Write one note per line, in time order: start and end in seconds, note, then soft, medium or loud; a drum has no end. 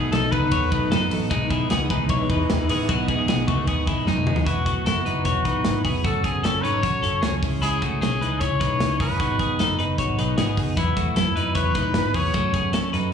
0.00 1.28 B2 medium
0.00 0.30 F#3 medium
0.00 1.28 A3 medium
0.00 0.13 B3 medium
0.00 0.33 B3 medium
0.00 1.28 D#4 medium
0.00 0.32 F#4 medium
0.00 0.12 G#4 medium
0.00 0.14 G#4 medium
0.00 0.33 A4 medium
0.12 0.30 B1 loud
0.12 0.31 D#4 medium
0.12 0.31 A4 medium
0.12 0.33 A4 medium
0.12 snare medium
0.12 ride medium
0.32 0.49 C#2 loud
0.32 0.71 F#3 medium
0.32 0.73 B3 medium
0.32 0.52 D#4 medium
0.32 0.72 F#4 medium
0.32 0.73 A4 medium
0.32 1.11 B4 loud
0.32 0.51 B4 medium
0.32 kick loud
0.32 ride soft
0.51 0.69 D#2 loud
0.51 0.72 F#4 medium
0.51 0.71 C#5 medium
0.51 kick medium
0.51 ride medium
0.72 0.89 B1 medium
0.72 0.90 F#3 medium
0.72 0.91 B3 medium
0.72 0.90 D#4 medium
0.72 0.92 F#4 medium
0.72 0.92 A4 medium
0.72 0.91 B4 medium
0.72 kick loud
0.72 ride medium
0.91 1.08 F#2 loud
0.91 1.09 F#3 medium
0.91 1.10 B3 medium
0.91 1.29 D#4 medium
0.91 1.11 F#4 medium
0.91 1.28 A4 medium
0.91 1.12 A4 medium
0.91 snare loud
0.91 ride medium
1.10 1.28 A1 loud
1.10 1.31 F#3 medium
1.10 1.30 B3 medium
1.10 1.31 F#4 medium
1.10 1.32 A4 medium
1.10 open hi-hat medium
1.10 ride medium
1.30 1.64 B1 loud
1.30 1.50 B2 medium
1.30 1.51 E3 medium
1.30 4.44 E3 medium
1.30 1.50 G#3 medium
1.30 1.48 G#3 medium
1.30 4.44 G#3 medium
1.30 1.49 B3 medium
1.30 1.50 D#4 loud
1.30 4.44 D#4 medium
1.30 1.50 D#4 loud
1.30 1.51 G#4 loud
1.30 kick loud
1.30 hi-hat pedal medium
1.30 ride medium
1.50 1.88 G#3 medium
1.50 1.71 G#3 medium
1.50 1.90 B3 medium
1.50 1.90 D#4 medium
1.50 1.70 E4 medium
1.50 1.91 G#4 medium
1.50 kick medium
1.50 ride medium
1.70 1.87 C#2 medium
1.70 1.91 B3 medium
1.70 1.90 G#4 medium
1.70 snare loud
1.70 ride medium
1.89 2.07 C#2 medium
1.89 2.28 G#3 medium
1.89 2.30 B3 medium
1.89 2.30 D#4 medium
1.89 2.10 D#4 medium
1.89 2.31 G#4 medium
1.89 2.10 B4 medium
1.89 kick loud
1.89 ride medium
2.09 2.26 B1 medium
2.09 2.30 E4 medium
2.09 2.30 C#5 medium
2.09 kick medium
2.09 ride medium
2.29 2.46 E2 medium
2.29 2.47 G#3 medium
2.29 2.48 B3 medium
2.29 2.49 D#4 medium
2.29 2.67 D#4 medium
2.29 2.50 G#4 medium
2.29 2.67 B4 medium
2.29 kick loud
2.29 ride medium
2.49 2.66 D#2 loud
2.49 2.67 G#3 medium
2.49 2.69 B3 medium
2.49 2.69 D#4 medium
2.49 2.70 G#4 medium
2.49 snare loud
2.49 ride medium
2.69 2.86 A1 loud
2.69 2.89 G#3 medium
2.69 2.89 B3 medium
2.69 2.89 D#4 medium
2.69 2.89 G#4 medium
2.69 open hi-hat medium
2.69 ride medium
2.89 3.22 B1 loud
2.89 3.08 B2 medium
2.89 3.09 E3 medium
2.89 3.07 G#3 medium
2.89 3.08 B3 loud
2.89 3.09 B3 medium
2.89 3.09 D#4 medium
2.89 3.09 F#4 loud
2.89 3.09 G#4 loud
2.89 kick loud
2.89 hi-hat pedal medium
2.89 ride medium
3.08 3.47 G#3 medium
3.08 3.48 B3 medium
3.08 3.28 B3 medium
3.08 3.48 D#4 medium
3.08 3.27 G#4 medium
3.08 3.49 G#4 medium
3.08 kick loud
3.08 ride medium
3.28 3.45 B1 medium
3.28 3.48 B3 medium
3.28 3.47 G#4 medium
3.28 snare loud
3.28 ride medium
3.48 3.68 C#2 medium
3.48 3.86 G#3 medium
3.48 3.68 A3 medium
3.48 3.88 B3 medium
3.48 3.88 D#4 medium
3.48 3.68 F#4 medium
3.48 3.88 G#4 medium
3.48 kick loud
3.48 ride soft
3.67 3.87 D#2 loud
3.67 3.88 B3 medium
3.67 3.87 G#4 medium
3.67 kick medium
3.67 ride medium
3.87 4.04 B1 medium
3.87 4.05 G#3 medium
3.87 4.07 G#3 medium
3.87 4.06 B3 medium
3.87 4.07 D#4 medium
3.87 4.07 E4 medium
3.87 4.08 G#4 medium
3.87 kick loud
3.87 ride medium
4.07 4.24 F#2 loud
4.07 4.25 G#3 medium
4.07 4.45 G#3 medium
4.07 4.26 B3 medium
4.07 4.44 D#4 medium
4.07 4.27 D#4 medium
4.07 4.27 G#4 medium
4.07 snare medium
4.17 high tom medium
4.26 4.44 D#2 medium
4.26 4.46 G#3 medium
4.26 4.46 B3 medium
4.26 4.47 D#4 medium
4.26 4.47 G#4 medium
4.26 mid tom medium
4.36 floor tom medium
4.46 4.80 E1 loud
4.46 5.06 E3 medium
4.46 5.05 F#3 medium
4.46 5.05 B3 medium
4.46 4.67 B3 medium
4.46 4.65 E4 loud
4.46 5.06 E4 medium
4.46 4.83 F#4 medium
4.46 5.07 B4 medium
4.46 kick loud
4.46 closed hi-hat medium
4.66 4.86 A3 medium
4.66 4.86 F#4 medium
4.66 kick medium
4.66 closed hi-hat medium
4.86 5.03 F#1 medium
4.86 5.05 E4 medium
4.86 5.23 F#4 medium
4.86 5.05 A4 medium
4.86 snare loud
4.86 closed hi-hat medium
5.05 5.23 F#1 medium
5.05 5.44 F#3 medium
5.05 5.45 B3 medium
5.05 5.26 D#4 medium
5.05 5.46 E4 medium
5.05 5.25 B4 medium
5.05 5.46 B4 medium
5.05 closed hi-hat medium
5.25 5.42 E1 medium
5.25 5.45 E4 medium
5.25 5.81 F#4 medium
5.25 5.44 C#5 medium
5.25 kick medium
5.25 closed hi-hat medium
5.45 5.62 A1 medium
5.45 5.64 F#3 medium
5.45 5.65 B3 medium
5.45 5.83 D#4 medium
5.45 5.66 E4 medium
5.45 5.82 B4 medium
5.45 5.66 B4 medium
5.45 kick medium
5.45 closed hi-hat medium
5.65 5.84 G#1 medium
5.65 5.83 F#3 medium
5.65 5.84 B3 medium
5.65 5.85 E4 medium
5.65 5.86 B4 medium
5.65 snare loud
5.65 closed hi-hat medium
5.84 6.01 E1 medium
5.84 6.03 F#3 medium
5.84 6.04 B3 medium
5.84 6.05 B3 medium
5.84 6.05 E4 medium
5.84 6.04 G#4 medium
5.84 6.06 B4 medium
5.84 kick medium
5.84 open hi-hat medium
6.04 6.38 F#1 loud
6.04 6.62 F#3 medium
6.04 6.25 A3 medium
6.04 6.64 C#4 medium
6.04 6.24 F#4 medium
6.04 6.64 F#4 medium
6.04 6.27 A4 loud
6.04 6.64 A4 medium
6.04 kick loud
6.04 closed hi-hat medium
6.24 6.44 B3 medium
6.24 6.43 G#4 medium
6.24 6.46 G#4 medium
6.24 kick medium
6.24 closed hi-hat medium
6.43 6.61 F#1 medium
6.43 6.64 C#4 medium
6.43 6.63 A4 medium
6.43 6.65 A4 loud
6.43 snare loud
6.43 closed hi-hat medium
6.63 6.81 G#1 medium
6.63 7.01 F#3 medium
6.63 7.03 C#4 medium
6.63 6.83 D#4 medium
6.63 7.03 F#4 medium
6.63 7.04 A4 medium
6.63 6.82 B4 medium
6.63 7.42 C#5 loud
6.63 closed hi-hat medium
6.83 7.00 A1 medium
6.83 7.03 F#4 medium
6.83 7.02 C#5 medium
6.83 kick medium
6.83 closed hi-hat medium
7.02 7.20 F#1 medium
7.02 7.21 F#3 medium
7.02 7.21 C#4 medium
7.02 7.22 C#4 medium
7.02 7.23 F#4 medium
7.02 7.22 A4 medium
7.02 7.24 A4 medium
7.02 closed hi-hat medium
7.22 7.40 C#2 medium
7.22 7.42 F#3 medium
7.22 7.60 C#4 medium
7.22 7.42 C#4 medium
7.22 7.43 F#4 medium
7.22 7.59 G#4 medium
7.22 7.44 A4 medium
7.22 snare loud
7.22 closed hi-hat medium
7.42 7.93 C#2 medium
7.42 7.62 G#3 medium
7.42 7.62 C#4 medium
7.42 7.63 E4 medium
7.42 7.63 G#4 medium
7.42 kick loud
7.42 open hi-hat medium
7.62 8.22 C#3 medium
7.62 7.82 G#3 medium
7.62 8.20 G#3 medium
7.62 8.20 C#4 medium
7.62 7.82 E4 medium
7.62 8.21 E4 medium
7.62 7.99 G#4 loud
7.62 8.23 G#4 medium
7.62 closed hi-hat medium
7.82 8.02 A3 medium
7.82 8.01 F#4 medium
7.82 kick medium
7.82 closed hi-hat medium
8.01 8.22 B1 medium
8.01 8.22 C#4 medium
8.01 8.42 G#4 medium
8.01 8.21 G#4 medium
8.01 snare loud
8.01 closed hi-hat medium
8.20 8.38 C#2 medium
8.20 8.60 G#3 medium
8.20 8.60 C#4 medium
8.20 8.41 D#4 medium
8.20 8.61 E4 medium
8.20 8.63 G#4 medium
8.20 8.40 B4 medium
8.20 closed hi-hat medium
8.40 8.58 C#2 loud
8.40 8.60 E4 medium
8.40 9.00 C#5 loud
8.40 8.60 C#5 medium
8.40 kick medium
8.40 closed hi-hat medium
8.60 8.78 B1 medium
8.60 8.79 G#3 medium
8.60 8.80 C#4 medium
8.60 8.98 D#4 medium
8.60 8.81 E4 medium
8.60 8.82 G#4 medium
8.60 8.98 B4 medium
8.60 kick medium
8.60 closed hi-hat medium
8.80 8.97 C#2 loud
8.80 8.99 G#3 medium
8.80 9.00 C#4 medium
8.80 9.00 E4 medium
8.80 9.01 G#4 medium
8.80 snare loud
8.80 closed hi-hat medium
9.00 9.17 F#1 medium
9.00 9.20 G#3 medium
9.00 9.20 B3 medium
9.00 9.20 C#4 medium
9.00 9.20 E4 medium
9.00 9.20 G#4 medium
9.00 9.76 B4 loud
9.00 kick medium
9.00 open hi-hat medium
9.19 9.53 G#1 loud
9.19 9.79 G#2 medium
9.19 9.79 D#3 medium
9.19 9.77 F#3 medium
9.19 9.78 B3 medium
9.19 9.39 B3 medium
9.19 9.78 D#4 medium
9.19 9.39 F#4 medium
9.19 9.79 G#4 medium
9.19 kick loud
9.19 closed hi-hat loud
9.39 9.60 B3 medium
9.39 9.59 G#4 medium
9.39 kick medium
9.39 closed hi-hat medium
9.59 9.76 F#1 medium
9.59 9.79 D#4 medium
9.59 9.78 A4 medium
9.59 snare medium
9.59 closed hi-hat medium
9.78 9.96 F#1 medium
9.78 10.17 F#3 medium
9.78 10.18 B3 medium
9.78 10.18 D#4 medium
9.78 9.99 D#4 medium
9.78 10.19 G#4 medium
9.78 9.98 B4 medium
9.78 closed hi-hat medium
9.98 10.15 G#1 medium
9.98 10.19 F#4 medium
9.98 10.18 C#5 medium
9.98 kick medium
9.98 closed hi-hat medium
10.17 10.35 B1 medium
10.17 10.35 F#3 medium
10.17 10.36 B3 medium
10.17 10.38 D#4 medium
10.17 10.37 D#4 medium
10.17 10.38 G#4 medium
10.17 10.37 B4 medium
10.17 closed hi-hat medium
10.36 10.54 G#1 loud
10.36 10.56 F#3 medium
10.36 10.57 B3 medium
10.36 10.75 B3 medium
10.36 10.58 D#4 medium
10.36 10.75 G#4 medium
10.36 10.58 G#4 medium
10.36 snare loud
10.36 closed hi-hat medium
10.57 10.74 F#1 medium
10.57 10.76 F#3 medium
10.57 10.77 B3 medium
10.57 10.78 D#4 medium
10.57 10.78 G#4 medium
10.57 kick medium
10.57 open hi-hat medium
10.77 11.11 E2 loud
10.77 11.36 E3 medium
10.77 11.35 F#3 medium
10.77 10.96 B3 medium
10.77 11.36 B3 medium
10.77 10.97 E4 medium
10.77 11.36 E4 medium
10.77 11.15 E4 medium
10.77 11.37 B4 medium
10.77 kick loud
10.77 closed hi-hat medium
10.97 11.17 A3 medium
10.97 11.17 F#4 medium
10.97 kick medium
10.97 closed hi-hat medium
11.16 11.33 F#2 medium
11.16 11.36 E4 medium
11.16 11.54 E4 medium
11.16 11.35 A4 medium
11.16 snare loud
11.16 closed hi-hat medium
11.36 11.53 F#2 medium
11.36 11.74 F#3 medium
11.36 11.75 B3 medium
11.36 11.56 D#4 medium
11.36 11.76 E4 medium
11.36 11.54 B4 medium
11.36 11.77 B4 medium
11.36 closed hi-hat medium
11.55 11.73 E2 medium
11.55 11.75 E4 medium
11.55 12.17 B4 loud
11.55 11.74 C#5 medium
11.55 kick medium
11.55 closed hi-hat medium
11.75 11.92 A2 medium
11.75 11.93 F#3 medium
11.75 11.95 B3 medium
11.75 12.13 D#4 medium
11.75 11.95 E4 medium
11.75 12.12 B4 medium
11.75 11.96 B4 medium
11.75 kick medium
11.75 closed hi-hat medium
11.94 12.12 G#2 medium
11.94 12.13 F#3 medium
11.94 12.14 B3 medium
11.94 12.15 E4 medium
11.94 12.15 B4 medium
11.94 snare loud
11.94 closed hi-hat medium
12.14 12.32 E2 medium
12.14 12.32 F#3 medium
12.14 12.33 B3 medium
12.14 12.34 B3 medium
12.14 12.34 E4 medium
12.14 12.35 G#4 medium
12.14 12.35 B4 medium
12.14 12.94 C#5 loud
12.14 kick medium
12.14 open hi-hat medium
12.33 12.81 F#2 loud
12.33 12.91 F#3 medium
12.33 12.55 A3 medium
12.33 12.93 C#4 medium
12.33 12.54 F#4 loud
12.33 12.93 F#4 medium
12.33 12.94 A4 medium
12.33 kick loud
12.33 closed hi-hat medium
12.54 12.74 B3 medium
12.54 12.73 G#4 medium
12.54 kick loud
12.54 closed hi-hat medium
12.73 12.94 C#4 medium
12.73 12.93 A4 medium
12.73 snare loud
12.73 closed hi-hat medium
12.92 13.10 F#2 loud
12.92 13.13 F#3 medium
12.92 13.13 C#4 medium
12.92 13.13 D#4 medium
12.92 13.13 F#4 medium
12.92 13.13 A4 medium
12.92 13.12 B4 medium
12.92 closed hi-hat medium